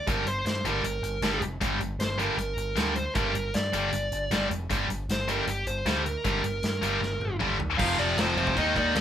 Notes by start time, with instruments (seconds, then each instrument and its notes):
0.07 picked electric bass G1, distorted electric guitar G2 D3 G3, lead electric guitar A#4, kick, closed hi-hat
0.26 picked electric bass G1, lead electric guitar C5, closed hi-hat
0.46 picked electric bass G2, lead electric guitar C5, snare, closed hi-hat
0.64 picked electric bass G1, distorted electric guitar G2 D3 G3, lead electric guitar A#4, closed hi-hat
0.83 picked electric bass G1, closed hi-hat
1.02 picked electric bass G1, closed hi-hat
1.22 picked electric bass G1, distorted electric guitar G2 D3 G3, snare, closed hi-hat
1.41 picked electric bass F1, closed hi-hat
1.61 picked electric bass G1, distorted electric guitar G2 D3 G3, kick, closed hi-hat
1.80 picked electric bass G1, closed hi-hat
1.99 picked electric bass G1, lead electric guitar C5, snare, closed hi-hat
2.18 distorted electric guitar G2 D3 G3, lead electric guitar A#4, closed hi-hat
2.37 picked electric bass G1, lead electric guitar A#4, closed hi-hat
2.57 picked electric bass G1, closed hi-hat
2.76 picked electric bass D2, distorted electric guitar G2 D3 G3, snare, closed hi-hat
2.96 lead electric guitar C5, closed hi-hat
3.15 picked electric bass G1, distorted electric guitar G2 D3 G3, lead electric guitar A#4, kick, closed hi-hat
3.35 picked electric bass G1, closed hi-hat
3.54 picked electric bass G2, lead electric guitar D5, snare, closed hi-hat
3.73 picked electric bass G1, distorted electric guitar G2 D3 G3, closed hi-hat
3.93 picked electric bass G1, closed hi-hat
4.12 picked electric bass G1, closed hi-hat
4.31 picked electric bass G1, distorted electric guitar G2 D3 G3, snare, closed hi-hat
4.51 picked electric bass F1, closed hi-hat
4.70 picked electric bass G1, distorted electric guitar G2 D3 G3, kick, closed hi-hat
4.89 picked electric bass G1, closed hi-hat
5.09 picked electric bass G1, lead electric guitar C5, snare, closed hi-hat
5.28 distorted electric guitar G2 D3 G3, lead electric guitar A#4, closed hi-hat
5.47 picked electric bass G1, lead electric guitar G4, closed hi-hat
5.67 picked electric bass G1, lead electric guitar C5, closed hi-hat
5.85 picked electric bass D2, distorted electric guitar G2 D3 G3, snare, closed hi-hat
6.05 lead electric guitar A#4, closed hi-hat
6.25 picked electric bass G1, distorted electric guitar G2 D3 G3, kick, closed hi-hat
6.44 picked electric bass G1, closed hi-hat
6.63 picked electric bass G2, snare, closed hi-hat
6.82 picked electric bass G1, distorted electric guitar G2 D3 G3, closed hi-hat
7.01 picked electric bass G1, snare
7.20 picked electric bass G1, high tom
7.40 picked electric bass G1, distorted electric guitar G2 D3 G3, mid tom
7.60 picked electric bass D#2, floor tom
7.78 picked electric bass F1, distorted electric guitar F2 C3 F3, lead electric guitar F5, kick, crash
7.97 picked electric bass F1, distorted electric guitar F2 C3 F3, lead electric guitar D5, crash
8.17 picked electric bass F1, distorted electric guitar F2 C3 F3, lead electric guitar C5, snare, crash
8.36 picked electric bass F1, distorted electric guitar F2 C3 F3, lead electric guitar C5, crash
8.47 kick
8.56 picked electric bass D#2, distorted electric guitar D#3 A#3 D#4, lead electric guitar D#5, kick, crash
8.75 picked electric bass D#2, distorted electric guitar D#3 A#3 D#4, lead electric guitar D5, kick, crash
8.94 picked electric bass D#2, distorted electric guitar D#3 A#3 D#4, lead electric guitar D#5, snare, crash